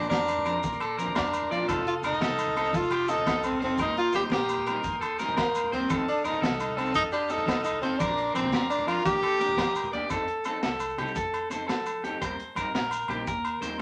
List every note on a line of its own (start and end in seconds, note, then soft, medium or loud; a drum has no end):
0.00 0.11 A#1 medium
0.00 1.67 D5 medium
0.00 1.67 A#5 medium
0.00 1.67 C6 medium
0.00 low conga medium
0.00 maracas soft
0.09 0.59 F2 medium
0.09 0.59 D4 medium
0.09 0.44 A#4 medium
0.09 snare medium
0.09 closed hi-hat medium
0.09 high conga loud
0.19 low conga soft
0.19 maracas soft
0.28 closed hi-hat soft
0.28 low agogo medium
0.28 maracas medium
0.38 low conga medium
0.45 0.56 F3 medium
0.45 0.57 C4 medium
0.45 0.57 D4 medium
0.45 0.79 A#4 medium
0.45 0.57 A#4 medium
0.45 closed hi-hat soft
0.45 low agogo medium
0.45 maracas soft
0.63 1.18 A#1 medium
0.63 kick medium
0.63 closed hi-hat medium
0.63 high conga medium
0.63 maracas medium
0.73 low conga medium
0.73 maracas soft
0.80 0.98 A4 medium
0.80 closed hi-hat soft
0.80 low agogo medium
0.80 maracas soft
0.98 1.09 F3 medium
0.98 1.09 C4 medium
0.98 1.10 D4 medium
0.98 1.15 A#4 medium
0.98 1.10 A#4 medium
0.98 closed hi-hat soft
0.98 low conga soft
0.98 maracas medium
1.08 low conga medium
1.15 1.49 F2 medium
1.15 1.53 D4 medium
1.15 1.49 A#4 medium
1.15 kick medium
1.15 snare medium
1.15 closed hi-hat medium
1.15 high conga medium
1.15 low agogo medium
1.15 maracas soft
1.25 maracas soft
1.33 closed hi-hat soft
1.33 low conga soft
1.33 low agogo medium
1.33 maracas medium
1.42 low conga medium
1.51 1.67 A#1 medium
1.51 1.61 F3 medium
1.51 1.62 C4 medium
1.51 1.62 D4 medium
1.51 1.86 F4 medium
1.51 1.63 A#4 medium
1.51 1.68 D5 medium
1.51 closed hi-hat soft
1.51 low conga soft
1.60 low conga soft
1.68 2.02 F1 medium
1.68 1.79 C4 medium
1.68 1.79 D#4 medium
1.68 2.02 A4 medium
1.68 1.80 A4 medium
1.68 3.77 F5 medium
1.68 3.77 A5 medium
1.68 7.96 D#6 medium
1.68 kick medium
1.68 closed hi-hat medium
1.68 high conga medium
1.68 low agogo medium
1.68 maracas medium
1.77 low conga medium
1.87 1.95 F4 medium
1.87 closed hi-hat soft
2.02 2.22 F1 medium
2.02 2.14 A4 medium
2.02 2.21 A#4 medium
2.02 muted clean electric guitar stroke medium
2.02 closed hi-hat soft
2.02 low agogo medium
2.02 maracas medium
2.06 2.78 D#4 medium
2.12 low conga medium
2.12 maracas soft
2.21 2.70 C2 medium
2.21 2.55 A4 medium
2.21 snare medium
2.21 closed hi-hat medium
2.21 high conga medium
2.38 closed hi-hat soft
2.38 low conga soft
2.38 low agogo medium
2.38 maracas medium
2.47 low conga medium
2.56 2.67 C4 medium
2.56 2.67 D#4 medium
2.56 2.90 A4 medium
2.56 2.67 A4 medium
2.56 closed hi-hat soft
2.56 low agogo medium
2.56 maracas soft
2.65 maracas soft
2.73 3.28 F1 medium
2.73 3.11 F4 medium
2.73 kick medium
2.73 closed hi-hat medium
2.73 high conga medium
2.73 maracas medium
2.82 low conga medium
2.82 maracas soft
2.91 3.08 G4 medium
2.91 closed hi-hat soft
2.91 low agogo medium
2.91 maracas soft
3.08 3.19 C4 medium
3.08 3.45 D#4 medium
3.08 3.20 D#4 medium
3.08 3.25 A4 medium
3.08 3.21 A4 medium
3.08 closed hi-hat soft
3.08 maracas medium
3.17 low conga medium
3.26 3.59 C2 medium
3.26 3.60 A4 medium
3.26 kick medium
3.26 snare medium
3.26 closed hi-hat medium
3.26 high conga loud
3.26 low agogo medium
3.43 3.61 C4 medium
3.43 closed hi-hat soft
3.43 low agogo medium
3.43 maracas medium
3.52 low conga medium
3.60 3.78 F1 medium
3.60 3.72 C4 medium
3.60 3.79 C4 medium
3.60 3.73 D#4 medium
3.60 3.73 A4 medium
3.60 3.78 C5 medium
3.60 closed hi-hat soft
3.70 low conga soft
3.78 4.12 D#2 medium
3.78 3.90 G3 medium
3.78 3.90 C4 medium
3.78 3.90 D#4 medium
3.78 3.97 D#4 medium
3.78 4.13 A#4 medium
3.78 3.91 A#4 medium
3.78 5.88 G5 medium
3.78 5.87 C6 medium
3.78 kick medium
3.78 closed hi-hat medium
3.78 high conga medium
3.78 low agogo medium
3.78 maracas medium
3.87 low conga medium
3.97 4.14 F4 medium
3.97 closed hi-hat soft
4.13 4.32 D#2 medium
4.13 4.25 G3 medium
4.13 4.25 C4 medium
4.13 4.26 D#4 medium
4.13 4.23 G4 medium
4.13 4.31 C5 medium
4.13 closed hi-hat soft
4.13 low agogo medium
4.13 maracas medium
4.17 4.26 A#4 medium
4.22 low conga medium
4.22 maracas soft
4.30 4.80 A#1 loud
4.30 4.81 G4 medium
4.30 4.65 A#4 medium
4.30 snare medium
4.30 closed hi-hat medium
4.30 high conga medium
4.48 closed hi-hat soft
4.48 low conga soft
4.48 low agogo medium
4.48 maracas medium
4.58 low conga medium
4.66 4.78 G3 medium
4.66 4.78 C4 medium
4.66 4.78 D#4 medium
4.66 5.00 A#4 medium
4.66 4.79 A#4 medium
4.66 closed hi-hat medium
4.66 low agogo medium
4.66 maracas soft
4.83 5.37 D#2 medium
4.83 kick medium
4.83 closed hi-hat medium
4.83 high conga medium
4.83 maracas medium
4.93 low conga medium
5.01 5.18 A4 medium
5.01 closed hi-hat soft
5.01 low agogo medium
5.01 maracas soft
5.19 5.31 G3 medium
5.19 5.31 C4 medium
5.19 5.31 D#4 medium
5.19 5.35 A#4 medium
5.19 snare soft
5.19 closed hi-hat soft
5.19 maracas medium
5.23 5.32 A#4 medium
5.28 low conga medium
5.28 maracas soft
5.37 5.70 A#1 medium
5.37 5.71 A#3 medium
5.37 5.70 A#4 medium
5.37 kick medium
5.37 snare medium
5.37 closed hi-hat medium
5.37 high conga medium
5.37 low agogo medium
5.55 closed hi-hat medium
5.55 low agogo medium
5.55 maracas medium
5.64 low conga medium
5.72 5.88 D#2 medium
5.72 5.83 G3 medium
5.72 5.83 C4 medium
5.72 6.06 C4 medium
5.72 5.83 A#4 medium
5.72 5.89 C5 medium
5.72 muted clean electric guitar stroke medium
5.72 closed hi-hat soft
5.82 low conga soft
5.90 6.23 F2 medium
5.90 6.01 C4 medium
5.90 6.01 D#4 medium
5.90 6.23 A4 medium
5.90 6.01 A4 medium
5.90 7.99 F5 medium
5.90 7.99 A5 medium
5.90 kick medium
5.90 closed hi-hat medium
5.90 high conga medium
5.90 low agogo medium
5.90 maracas medium
6.00 low conga medium
6.08 6.27 D4 medium
6.08 closed hi-hat soft
6.24 6.44 F2 loud
6.24 6.36 C4 medium
6.24 6.60 D#4 medium
6.24 6.37 D#4 medium
6.24 6.41 A#4 medium
6.24 closed hi-hat soft
6.24 low agogo medium
6.24 maracas medium
6.28 6.37 A4 medium
6.33 low conga medium
6.33 maracas soft
6.42 6.91 C2 medium
6.42 6.75 A4 medium
6.42 snare medium
6.42 closed hi-hat medium
6.42 high conga medium
6.59 6.79 D#4 medium
6.59 closed hi-hat soft
6.59 low conga soft
6.59 low agogo medium
6.59 maracas medium
6.69 low conga medium
6.77 6.88 C4 medium
6.77 6.95 C4 medium
6.77 6.88 D#4 medium
6.77 7.10 A4 medium
6.77 6.88 A4 medium
6.77 closed hi-hat soft
6.77 low agogo medium
6.77 maracas soft
6.86 maracas soft
6.94 7.49 F2 medium
6.94 7.03 D#4 loud
6.94 kick medium
6.94 closed hi-hat medium
6.94 high conga medium
6.94 maracas medium
7.03 low conga medium
7.11 7.33 D4 medium
7.11 7.29 G4 medium
7.11 closed hi-hat soft
7.11 low agogo medium
7.11 maracas soft
7.29 7.40 C4 medium
7.29 7.41 D#4 medium
7.29 7.64 D#4 loud
7.29 7.46 A4 medium
7.29 7.41 A4 medium
7.29 closed hi-hat soft
7.29 maracas medium
7.38 low conga medium
7.38 maracas soft
7.46 7.81 C2 medium
7.46 7.81 A4 medium
7.46 kick medium
7.46 snare medium
7.46 closed hi-hat medium
7.46 high conga medium
7.46 low agogo medium
7.64 7.81 D#4 medium
7.64 closed hi-hat soft
7.64 low agogo medium
7.64 maracas medium
7.73 low conga medium
7.81 7.99 F2 medium
7.81 7.92 C4 medium
7.81 8.01 C4 medium
7.81 7.93 D#4 medium
7.81 7.93 A4 medium
7.81 8.00 C5 medium
7.81 closed hi-hat soft
7.91 low conga soft
7.99 8.33 A#1 medium
7.99 8.10 F3 medium
7.99 8.10 C4 medium
7.99 8.34 D4 medium
7.99 8.33 A#4 medium
7.99 8.11 A#4 medium
7.99 9.04 D5 medium
7.99 9.04 A#5 medium
7.99 9.04 C6 medium
7.99 muted clean electric guitar stroke medium
7.99 kick medium
7.99 closed hi-hat medium
7.99 high conga medium
7.99 low conga soft
7.99 low agogo medium
7.99 maracas medium
8.09 low conga medium
8.18 closed hi-hat soft
8.26 low conga soft
8.34 8.52 A#1 medium
8.34 8.45 F3 medium
8.34 8.45 C4 medium
8.34 8.68 C4 medium
8.34 8.46 D4 medium
8.34 8.46 A#4 medium
8.34 8.52 C5 medium
8.34 closed hi-hat soft
8.34 low agogo medium
8.34 maracas medium
8.44 low conga medium
8.52 9.02 F2 medium
8.52 8.87 A#4 medium
8.52 snare medium
8.52 closed hi-hat medium
8.52 high conga medium
8.52 low conga soft
8.61 low conga soft
8.70 8.89 D4 medium
8.70 closed hi-hat soft
8.70 low agogo medium
8.70 maracas medium
8.79 low conga medium
8.86 8.98 F3 medium
8.86 8.98 C4 medium
8.86 8.99 D4 medium
8.86 9.05 F4 medium
8.86 9.21 A#4 medium
8.86 8.99 A#4 medium
8.86 closed hi-hat medium
8.86 low agogo medium
8.86 maracas soft
9.05 9.58 D#2 medium
9.05 9.16 A#3 medium
9.05 9.16 D4 medium
9.05 9.89 G4 loud
9.05 9.16 G4 medium
9.05 10.10 D#5 medium
9.05 10.10 G5 medium
9.05 10.10 D6 medium
9.05 kick medium
9.05 closed hi-hat medium
9.05 high conga loud
9.05 maracas medium
9.14 low conga medium
9.22 9.40 A4 medium
9.22 closed hi-hat soft
9.22 low conga soft
9.22 low agogo medium
9.39 9.50 A#3 medium
9.39 9.51 D4 medium
9.39 9.51 G4 medium
9.39 9.56 A#4 medium
9.39 snare soft
9.39 closed hi-hat soft
9.39 maracas medium
9.49 low conga medium
9.57 9.91 A#1 medium
9.57 9.91 A#4 medium
9.57 kick medium
9.57 snare medium
9.57 closed hi-hat medium
9.57 high conga loud
9.57 low conga soft
9.57 low agogo medium
9.57 maracas soft
9.75 closed hi-hat soft
9.75 low agogo medium
9.75 maracas medium
9.84 low conga medium
9.84 maracas soft
9.93 10.09 D#2 medium
9.93 10.04 A#3 medium
9.93 10.04 D4 medium
9.93 10.05 G4 medium
9.93 10.10 D5 medium
9.93 closed hi-hat soft
10.01 low conga soft
10.10 10.27 F2 medium
10.10 10.21 C4 medium
10.10 10.22 D#4 medium
10.10 10.44 A4 medium
10.10 10.22 A4 medium
10.10 kick medium
10.10 closed hi-hat medium
10.10 low agogo medium
10.10 maracas medium
10.28 closed hi-hat soft
10.44 10.56 C4 medium
10.44 10.57 D#4 medium
10.44 10.62 A4 medium
10.44 10.57 A4 medium
10.44 closed hi-hat soft
10.44 low agogo medium
10.44 maracas medium
10.63 10.96 C2 medium
10.63 10.97 A4 medium
10.63 snare medium
10.63 closed hi-hat medium
10.63 maracas soft
10.80 closed hi-hat soft
10.80 low agogo medium
10.80 maracas medium
10.89 maracas soft
10.98 11.15 C2 medium
10.98 11.09 C4 medium
10.98 11.09 D#4 medium
10.98 11.15 G4 medium
10.98 11.10 A4 medium
10.98 closed hi-hat soft
10.98 low agogo medium
11.07 maracas soft
11.15 11.49 F2 loud
11.15 11.49 A4 medium
11.15 kick medium
11.15 closed hi-hat medium
11.15 maracas medium
11.34 closed hi-hat soft
11.34 low agogo medium
11.50 11.68 F2 medium
11.50 11.61 C4 medium
11.50 11.62 D#4 medium
11.50 11.63 A4 medium
11.50 11.67 C5 medium
11.50 closed hi-hat soft
11.50 maracas medium
11.68 12.02 F3 medium
11.68 12.02 A4 medium
11.68 snare medium
11.68 closed hi-hat medium
11.68 low agogo medium
11.86 closed hi-hat soft
11.86 low agogo medium
11.86 maracas medium
12.03 12.20 F2 medium
12.03 12.14 C4 medium
12.03 12.15 D#4 medium
12.03 12.21 G4 medium
12.03 12.15 A4 medium
12.03 closed hi-hat soft
12.21 12.38 D#2 medium
12.21 12.32 G3 medium
12.21 12.32 C4 medium
12.21 12.32 A#4 medium
12.21 12.55 C5 medium
12.21 muted clean electric guitar stroke medium
12.21 kick medium
12.21 closed hi-hat medium
12.21 low agogo medium
12.21 maracas medium
12.40 closed hi-hat soft
12.55 12.67 G3 medium
12.55 12.67 C4 medium
12.55 12.68 D#4 medium
12.55 12.74 A#4 medium
12.55 12.68 A#4 medium
12.55 kick medium
12.55 closed hi-hat soft
12.55 low agogo medium
12.55 maracas medium
12.74 13.07 A#1 medium
12.74 13.08 A#4 medium
12.74 snare medium
12.74 closed hi-hat medium
12.74 maracas soft
12.91 closed hi-hat soft
12.91 low agogo medium
12.91 maracas medium
13.08 13.26 A#1 medium
13.08 13.20 G3 medium
13.08 13.20 C4 medium
13.08 13.20 D#4 medium
13.08 13.26 G4 medium
13.08 13.21 A#4 medium
13.08 closed hi-hat soft
13.08 low agogo medium
13.27 13.60 D#2 medium
13.27 13.61 A#4 medium
13.27 kick medium
13.27 closed hi-hat medium
13.27 maracas medium
13.45 closed hi-hat soft
13.45 low agogo medium
13.61 13.78 D#2 medium
13.61 13.72 G3 medium
13.61 13.73 C4 medium
13.61 13.73 D#4 medium
13.61 13.73 A#4 medium
13.61 13.79 C5 medium
13.61 closed hi-hat soft
13.61 maracas medium